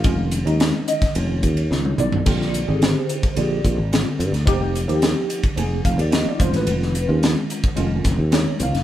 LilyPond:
<<
  \new Staff \with { instrumentName = "Tine electric piano" } { \time 4/4 \key f \dorian \tempo 4 = 109 << { f''8 r4 ees''8 cis''4. d''8~ | d''4 c''4 d''4. r8 | r2 aes''8 f''16 d''16 ees''16 d''16 c''16 ces''16~ | ces''4~ ces''16 r4. r16 cis''8 f''8 | } \\ { <ees gis cis' f'>8 r16 <ees gis cis' ees'>4 r16 <ees gis cis' f'>8. r16 <ees gis cis' ees'>8. r16 | <d g c' f'>8 r16 <d c' g' aes'>4 r16 <d c' g' aes'>8. r16 <d g c' f'>8. r16 | <f bes ees' g'>8 r16 <f bes ees' g'>4 r16 <f bes ees' aes'>8. r16 <f bes ees' f'>8 <ees gis cis' f'>8~ | <ees gis cis' f'>8 r16 <ees gis cis' f'>4 r16 <ees gis cis' f'>8. r16 <ees gis cis' ees'>8. r16 | } >> }
  \new Staff \with { instrumentName = "Fretless electric bass" } { \clef bass \time 4/4 \key f \dorian f,,8. ees,8 r8. f,,8 ees,8 cis,8 ces,8 | bes,,8. aes,,8 r8. bes,,8 bes,,16 aes,,8 r16 g,16 d,16 | f,,8. ees,8 r8. f,,8 f,,16 ees,8 r16 f,,16 a,,16 | f,,8. ees,8 r8. f,,8 f,,16 ees,8 r16 cis,16 ges,,16 | }
  \new DrumStaff \with { instrumentName = "Drums" } \drummode { \time 4/4 <bd cymr>8 <hhp cymr>16 cymr16 <cymr sn>8 <hhp cymr>16 <bd cymr sn>16 cymr8 <hhp bd cymr>16 cymr16 sn16 tommh16 <hhp toml>16 tomfh16 | <cymc bd cymr>16 sn16 <hhp cymr>8 <cymr sn>8 <hhp cymr>16 <bd cymr>16 cymr8 <hhp bd cymr>8 <cymr sn>8 <hhp cymr>16 <cymr sn>16 | <bd cymr>8 <hhp cymr>16 cymr16 <cymr sn>8 <hhp cymr>16 <bd cymr>16 cymr8 <hhp bd cymr>16 cymr16 <cymr sn>8 <hhp bd cymr>16 <cymr sn>16 | cymr16 sn16 <hhp cymr>8 <cymr sn>8 <hhp cymr>16 <bd cymr>16 cymr8 <hhp bd cymr sn>8 <cymr sn>8 <hhp cymr>16 <cymr sn>16 | }
>>